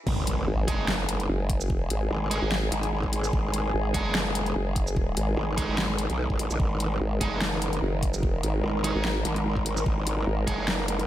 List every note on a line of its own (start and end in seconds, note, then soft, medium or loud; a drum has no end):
0.07 0.46 G#1 loud
0.07 11.07 D#3 medium
0.07 11.07 G#3 medium
0.07 6.58 G#4 medium
0.07 kick loud
0.07 crash loud
0.07 impact medium
0.27 closed hi-hat medium
0.47 0.66 G#1 loud
0.68 1.28 F#1 loud
0.68 0.87 G#3 medium
0.68 0.87 D#4 medium
0.68 0.87 G#4 loud
0.68 kick medium
0.68 closed hi-hat medium
0.88 snare loud
1.09 closed hi-hat medium
1.20 closed hi-hat soft
1.29 1.71 F#1 loud
1.50 kick loud
1.50 closed hi-hat medium
1.61 shaker medium
1.70 1.89 F1 loud
1.70 kick loud
1.90 2.09 G#1 loud
1.90 closed hi-hat medium
2.11 2.40 G#1 loud
2.31 2.50 G#3 medium
2.31 2.50 D#4 medium
2.31 2.50 G#4 medium
2.31 closed hi-hat medium
2.42 2.70 G#1 loud
2.52 snare loud
2.72 3.32 G#1 loud
2.72 closed hi-hat medium
2.83 closed hi-hat soft
3.03 kick medium
3.13 closed hi-hat medium
3.24 shaker soft
3.33 3.73 G#1 loud
3.33 kick loud
3.54 closed hi-hat medium
3.74 3.93 G#1 loud
3.94 4.54 F#1 loud
3.94 4.13 G#3 medium
3.94 4.13 D#4 medium
3.94 4.13 G#4 loud
3.94 kick medium
3.94 closed hi-hat medium
4.15 snare loud
4.35 closed hi-hat medium
4.46 closed hi-hat soft
4.56 5.15 F#1 loud
4.76 kick loud
4.76 closed hi-hat medium
4.87 shaker soft
4.96 kick loud
5.17 5.36 G#1 loud
5.17 closed hi-hat medium
5.37 5.67 G#1 loud
5.57 5.77 G#3 medium
5.57 5.77 D#4 medium
5.57 5.77 G#4 medium
5.57 kick medium
5.57 closed hi-hat medium
5.69 6.08 G#1 loud
5.78 snare loud
5.99 closed hi-hat medium
6.10 6.28 B1 medium
6.10 closed hi-hat soft
6.30 6.38 G#1 loud
6.30 kick medium
6.39 6.49 G#1 medium
6.39 closed hi-hat medium
6.50 6.58 A#1 loud
6.50 shaker medium
6.60 6.99 G#1 loud
6.60 11.07 A#4 medium
6.60 kick loud
6.80 closed hi-hat medium
7.01 7.19 G#1 loud
7.21 7.81 F#1 loud
7.21 7.40 G#3 medium
7.21 7.40 D#4 medium
7.21 7.40 G#4 medium
7.21 kick medium
7.21 closed hi-hat medium
7.41 snare loud
7.62 closed hi-hat medium
7.73 closed hi-hat soft
7.82 8.24 F#1 loud
8.03 kick loud
8.03 closed hi-hat medium
8.14 shaker medium
8.23 8.42 F1 loud
8.23 kick loud
8.43 8.62 G#1 loud
8.43 closed hi-hat medium
8.64 8.94 G#1 loud
8.84 9.03 G#3 medium
8.84 9.03 D#4 medium
8.84 9.03 G#4 medium
8.84 closed hi-hat medium
8.95 9.24 G#1 loud
9.05 snare loud
9.25 9.85 G#1 loud
9.25 closed hi-hat medium
9.36 closed hi-hat soft
9.57 kick medium
9.66 closed hi-hat medium
9.77 shaker medium
9.86 10.26 G#1 medium
9.86 kick loud
10.07 closed hi-hat medium
10.27 10.46 G#1 loud
10.47 11.07 F#1 loud
10.47 10.67 G#3 medium
10.47 10.67 D#4 medium
10.47 10.67 G#4 loud
10.47 kick medium
10.47 closed hi-hat medium
10.68 snare loud
10.88 closed hi-hat medium
10.99 closed hi-hat soft